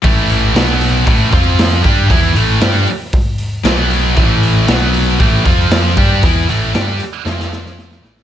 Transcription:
<<
  \new Staff \with { instrumentName = "Distorted electric guitar" } { \clef bass \time 4/4 \key a \minor \tempo 4 = 116 <a, e a>4 <b, fis b>4 <a, e a>8 <f c' f'>4 <g d' g'>8 | <e b e'>8 <a, e a>8 <g d' g'>8 r4. <b, fis b>4 | <a, e a>4 <b, fis b>4 <a, e a>8 <f c' f'>4 <g d' g'>8 | <e b e'>8 <a, e a>8 <g d' g'>8 r8 <f c' f'>4. <a, e a>8 | }
  \new Staff \with { instrumentName = "Distorted electric guitar" } { \clef bass \time 4/4 \key a \minor <a, e a>4 <b, fis b>4 <a, e a>8 <f c' f'>4 <g d' g'>8 | <e b e'>8 <a, e a>8 <g d' g'>8 r4. <b, fis b>4 | <a, e a>4 <b, fis b>4 <a, e a>8 <f c' f'>4 <g d' g'>8 | <e b e'>8 <a, e a>8 <g d' g'>8 r8 <f c' f'>4. <a, e a>8 | }
  \new Staff \with { instrumentName = "Picked electric bass" } { \clef bass \time 4/4 \key a \minor a,,4 b,,4 a,,8 f,4 g,8 | e,8 a,,8 g,8 r4. b,,4 | a,,4 b,,4 a,,8 f,4 g,8 | e,8 a,,8 g,8 r8 f,4. a,,8 | }
  \new DrumStaff \with { instrumentName = "Drums" } \drummode { \time 4/4 <hho bd>8 hho8 <hho sn>8 hho8 <hho bd>8 <hho bd>8 <hho sn>8 <hho bd>8 | <hho bd>8 hho8 <hho sn>8 hho8 <hho bd>8 hho8 <hho sn>8 hho8 | <hho bd>8 hho8 <hho sn>8 hho8 <hho bd>8 <hho bd>8 <hho sn>8 <hho bd>8 | <hho bd>8 hho8 <hho sn>8 hho8 sn16 sn16 sn16 sn16 sn16 sn16 sn16 sn16 | }
>>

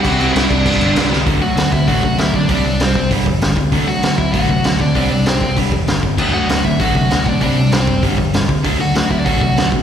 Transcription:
<<
  \new Staff \with { instrumentName = "Lead electric guitar" } { \time 4/4 \key d \mixolydian \tempo 4 = 195 <fis' fis''>4 <e' e''>8 <d' d''>4. r4 | r8 <fis' fis''>4 <e' e''>8 <fis' fis''>4 <e' e''>8 <d' d''>8 | <d' d''>4 <c' c''>4 r2 | r8 <fis' fis''>4 <e' e''>8 <fis' fis''>4. <d' d''>8 |
<d' d''>8 <d' d''>8 <c' c''>4 r2 | r8 <fis' fis''>4 <e' e''>8 <fis' fis''>4. <d' d''>8 | <d' d''>4 <c' c''>4 r2 | r8 <fis' fis''>8 <fis' fis''>8 <e' e''>16 <d' d''>16 <fis' fis''>4. r8 | }
  \new Staff \with { instrumentName = "Overdriven electric guitar" } { \clef bass \time 4/4 \key d \mixolydian <c g c' e'>8 <c g c' e'>8 <c g c' e'>8 <c g c' e'>8 <g, d g b d'>8 <g, d g b d'>8 <g, d g b d'>8 <g, d g b d'>8 | <d fis a>8 <d fis>8 <d fis>8 <d fis>8 <d fis a>8 <d fis>8 <d fis>8 <d fis>8 | <c g c'>8 <c g>8 <c g>8 <c g>8 <g, d g>8 <g, d>8 <g, d>8 <g, d>8 | <d fis a>8 <d fis>8 <d fis>8 <d fis>8 <d fis a>8 <d fis>8 <d fis>8 <d fis>8 |
<c g c'>8 <c g>8 <c g>8 <c g>8 <g, d g>8 <g, d>8 <g, d>8 <g, d>8 | <d fis a>8 <d fis>8 <d fis>8 <d fis>8 <d fis a>8 <d fis>8 <d fis>8 <d fis>8 | <c g c'>8 <c g>8 <c g>8 <c g>8 <g, d g>8 <g, d>8 <g, d>8 <g, d>8 | <d fis a>8 <d fis>8 <d fis>8 <d fis>8 <d fis a>8 <d fis>8 <d fis>8 <d fis>8 | }
  \new Staff \with { instrumentName = "Overdriven electric guitar" } { \clef bass \time 4/4 \key d \mixolydian <c g c'>8 <c g c'>8 <c g c'>8 <c g c'>8 <g, d g>8 <g, d g>8 <g, d g>8 <g, d g>8 | <d a d'>8 <d a>8 <d a>8 <d a>8 <d a d'>8 <d a>8 <d a>8 <d a>8 | <c g c'>8 <c g>8 <c g>8 <c g>8 <g, d g>8 <g, d>8 <g, d>8 <g, d>8 | <d a d'>8 <d a>8 <d a>8 <d a>8 <d a d'>8 <d a>8 <d a>8 <d a>8 |
<c g c'>8 <c g>8 <c g>8 <c g>8 <g, d g>8 <g, d>8 <g, d>8 <g, d>8 | <d a d'>8 <d a>8 <d a>8 <d a>8 <d a d'>8 <d a>8 <d a>8 <d a>8 | <c g c'>8 <c g>8 <c g>8 <c g>8 <g, d g>8 <g, d>8 <g, d>8 <g, d>8 | <d a d'>8 <d a>8 <d a>8 <d a>8 <d a d'>8 <d a>8 <d a>8 <d a>8 | }
  \new Staff \with { instrumentName = "Picked electric bass" } { \clef bass \time 4/4 \key d \mixolydian c,4 c,8 c,8 g,,8 g,,8 c,4 | d,8 d,8 d,8 d,8 a,,8 c8 d,8 d,8 | c,8 c,8 c,8 c,8 g,,8 e,8 g,,8 cis,8 | d,8 d,8 d,8 d,8 a,,8 c8 d,8 d,8 |
c,8 c,8 c,8 c,8 g,,8 e,8 g,,8 g,,8 | d,8 d,8 d,8 d,8 a,,8 c8 d,8 b,,8 | c,8 c,8 c,8 fis,,8 g,,8 e,8 g,,8 cis,8 | d,8 d,8 d,8 d,8 a,,8 c8 d,8 b,,8 | }
  \new DrumStaff \with { instrumentName = "Drums" } \drummode { \time 4/4 <cymc bd>8 cymc8 <cymc sn>8 <cymc bd>8 <cymc bd>8 cymc8 <cymc sn>8 sn8 | <hho bd>4 <hho sn>8 bd8 <hho bd>8 bd8 <hho sn>8 bd8 | <hho bd>4 <hho sn>8 bd8 <hho bd>8 bd8 <hho sn>8 bd8 | <hho bd>4 <hho sn>8 bd8 <hho bd>8 bd8 <hho sn>8 bd8 |
<hho bd>4 <hho sn>8 bd8 <hho bd>8 bd8 <hho sn>8 bd8 | <cymc bd>4 <hho sn>8 bd8 <hho bd>8 bd8 <hho sn>8 bd8 | <hho bd>4 <hho sn>8 bd8 <hho bd>8 bd8 <hho sn>8 bd8 | <hho bd>4 <hho sn>8 bd8 <hho bd>8 bd8 <hho sn>8 bd8 | }
>>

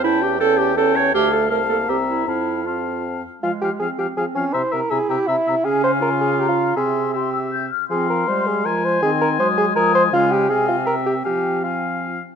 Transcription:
<<
  \new Staff \with { instrumentName = "Flute" } { \time 3/4 \key f \major \tempo 4 = 161 a''4 a''4 a''4 | a''4 a''4 bes''4 | a''4 a''4. r8 | \key f \minor aes''8 aes''8 aes''8 aes''8 aes''8 aes''8 |
bes''8 bes''8 bes''8 bes''8 bes''8 bes''8 | aes''2 bes''4 | c'''4 c'''8 e'''8 g'''8 f'''8 | c'''2. |
c'''4 ees'''4 ees'''4 | aes''4 aes''4 g''4 | aes''4 aes''4. r8 | }
  \new Staff \with { instrumentName = "Oboe" } { \time 3/4 \key f \major g''4 g''4 g''4 | f''4 f''4 e''4 | f''4 f''4. r8 | \key f \minor f''8 f''8 f''8 f''8 f''8 f''8 |
e''8 e''8 e''8 e''8 e''8 e''8 | f''2. | e''4 e''4. r8 | f''2 aes''4~ |
aes''2 aes''4 | f''4 f''4 e''4 | f''4 f''4. r8 | }
  \new Staff \with { instrumentName = "Bassoon" } { \time 3/4 \key f \major e,2. | d,4 c,4 c,4 | f,2~ f,8 r8 | \key f \minor f'8 g'8 aes'8 g'8 aes'8 des'8 |
c''8 bes'8 aes'8 g'8 e'4 | aes'8 c''8 bes'8 aes'8 g'16 f'8. | aes'4 g'4 r4 | aes'8 bes'8 c''8 aes'8 bes'8 c''8 |
aes'8 bes'8 c''8 aes'8 bes'8 c''8 | f'8 g'8 aes'8 f'8 bes'8 g'8 | g'4 f'4 r4 | }
  \new Staff \with { instrumentName = "Clarinet" } { \time 3/4 \key f \major e'8 g'8 a'8 g'8 a'8 cis''8 | g'8 a'8 bes'8 a'8 g'8 e'8 | e'4 f'4 r4 | \key f \minor aes4 c'4 c'4 |
e'4 e'2 | des'4 f'2 | c'2~ c'8 r8 | c'4 aes2 |
c'4 aes2 | aes4 c'2 | c'2~ c'8 r8 | }
  \new Staff \with { instrumentName = "French horn" } { \clef bass \time 3/4 \key f \major cis'4 cis'4 cis'4 | a4 a8 bes8 c'4 | c'4 c'4. r8 | \key f \minor f8 f8 f8 f8 f8 f8 |
c8 c8 c8 c8 c8 c8 | des2. | c2~ c8 r8 | f4 g4 f4 |
ees4 ges4 f4 | des4 c2 | f2~ f8 r8 | }
>>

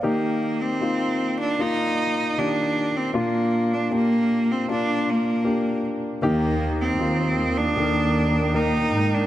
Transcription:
<<
  \new Staff \with { instrumentName = "Analog synth pad" } { \time 4/4 \key ees \major \tempo 4 = 78 r1 | r1 | <bes' g'' ees'''>1 | }
  \new Staff \with { instrumentName = "Grand piano" } { \time 4/4 \key ees \major << { f''16 r2. r8. | r1 | r1 | } \\ { <bes ees' g'>4 <bes ees' f'>4 <bes ees' f'>4 <ees bes g'>4 | <bes d' f'>4 <bes d' g'>4 <bes d' f'>4 <bes d' g'>4 | <bes ees' g'>4 <bes ees' f'>4 <ees bes a' bes'>4 <bes ees' bes'>4 | } >> }
  \new Staff \with { instrumentName = "Grand piano" } { \clef bass \time 4/4 \key ees \major ees4. r2 r8 | bes,4. r2 r8 | ees4. r2 r8 | }
  \new Staff \with { instrumentName = "Cello" } { \time 4/4 \key ees \major bes8. c'4 d'16 ees'4 d'8. c'16 | bes8. d'16 bes8. c'16 d'8 bes4 r8 | bes8. c'4 d'4~ d'16 ees'8. d'16 | }
  \new Staff \with { instrumentName = "Cello section" } { \clef bass \time 4/4 \key ees \major r1 | r1 | ees,4 ees,4 ees,4. aes,8 | }
>>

